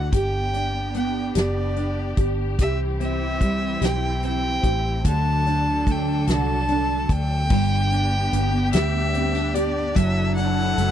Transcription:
Already playing: fingered electric bass D2, string section D3 D4 E4 F#4, nylon-string guitar D3 A3 E4 F#4
0.13 fingered electric bass G1, string section B3 D4 G4, nylon-string guitar G4, violin G5, kick, closed hi-hat
0.53 nylon-string guitar D4, closed hi-hat
0.94 nylon-string guitar B3, violin G5, closed hi-hat
1.35 fingered electric bass F#1, nylon-string guitar G4, violin D5, snare, closed hi-hat
1.76 nylon-string guitar D4, closed hi-hat
2.17 fingered electric bass G1, nylon-string guitar G4, kick, closed hi-hat
2.58 fingered electric bass C2, string section E3 C4 E4, nylon-string guitar G4, violin E5, kick, closed hi-hat
3.00 nylon-string guitar C4, violin E5, closed hi-hat
3.41 nylon-string guitar G3, kick, closed hi-hat
3.81 fingered electric bass B1, nylon-string guitar G4, violin G5, snare, closed hi-hat
4.22 nylon-string guitar C4, violin G5, closed hi-hat
4.63 fingered electric bass A1, nylon-string guitar G4, kick, closed hi-hat
5.04 fingered electric bass D2, string section D3 F#3 D4 A4, nylon-string guitar D3, violin A5, kick, closed hi-hat
5.46 nylon-string guitar D4, closed hi-hat
5.86 nylon-string guitar A3, kick, closed hi-hat
5.91 violin G5
6.27 fingered electric bass C2, nylon-string guitar F#4, violin A5, snare, closed hi-hat
6.69 nylon-string guitar D4, closed hi-hat
7.09 fingered electric bass D2, violin G5, kick, closed hi-hat
7.49 fingered electric bass G1, nylon-string guitar G2, string section B3 D4 G4, kick, crash
7.92 nylon-string guitar D4, closed hi-hat
8.32 fingered electric bass G1, nylon-string guitar B3, closed hi-hat
8.73 fingered electric bass D2, nylon-string guitar G4, violin E5, snare, closed hi-hat
9.14 nylon-string guitar C4, closed hi-hat
9.35 nylon-string guitar D4
9.54 nylon-string guitar G4, violin D5, closed hi-hat
9.95 fingered electric bass F#1, nylon-string guitar F#3, string section F#3 E4 A4, violin E5, kick, closed hi-hat
10.35 nylon-string guitar D4, violin F#5, closed hi-hat
10.78 fingered electric bass F#1, nylon-string guitar A3, closed hi-hat

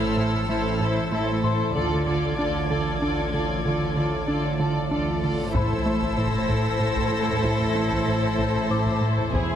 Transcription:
Already playing: double bass section A1, synth drone A1, cello section A2, viola section E4, violin section A4 C5 E6 F6
0.16 analog synth bass A2, viola section E4, violin section A4 C5
0.48 double bass section A1, cello section A2, analog synth bass A3, viola section E4, violin section A4 C5
0.80 analog synth bass A2, viola section E4, violin section A4 C5
1.11 double bass section A1, cello section A2, analog synth bass A3, viola section E4, violin section A4 C5
1.42 analog synth bass A2, viola section E4, violin section A4 C5, celesta C6
1.74 synth drone A1, double bass section D2, cello section D3, analog synth bass D3, viola section F4, violin section A4 D5 D6 G#6
2.06 analog synth bass D3, viola section F4, violin section A4 D5
2.36 double bass section D2, cello section D3, analog synth bass D4, viola section F4, violin section A4 D5
2.69 analog synth bass D3, viola section F4, violin section A4 D5
3.01 double bass section D2, cello section D3, analog synth bass D4, viola section F4, violin section A4 D5
3.33 analog synth bass D3, viola section F4, violin section A4 D5
3.64 double bass section D2, cello section D3, analog synth bass D3, viola section F4, violin section A4 D5, reverse cymbal
3.96 analog synth bass D3, viola section F4, violin section A4 D5
4.26 double bass section D2, cello section D3, analog synth bass D4, viola section F4, violin section A4 D5
4.58 analog synth bass D3, viola section F4, violin section A4 D5
4.90 double bass section D2, cello section D3, analog synth bass D4, viola section F4, violin section A4 D5
5.23 analog synth bass D3, viola section F4, violin section A4 D5
5.54 double bass section A1, synth drone A1, cello section A2, analog synth bass A2, viola section E4, violin section A4 C5 E6, celesta C5 B5, taiko, sub drop
5.70 taiko low
5.86 analog synth bass A3
6.02 taiko
6.17 analog synth bass A2, violin section A#6
6.48 analog synth bass A2, taiko
6.80 analog synth bass A2
6.96 taiko
7.11 analog synth bass A2
7.28 taiko low
7.43 analog synth bass A2, taiko
7.59 taiko low
7.75 analog synth bass A3
7.91 taiko
8.07 analog synth bass A2
8.38 analog synth bass A2, taiko
8.70 analog synth bass A2, celesta D6
8.85 taiko
9.01 analog synth bass A2
9.17 taiko low
9.32 double bass section E1, analog synth bass E2, cello section E2, viola section E4, violin section G#4 B5, taiko

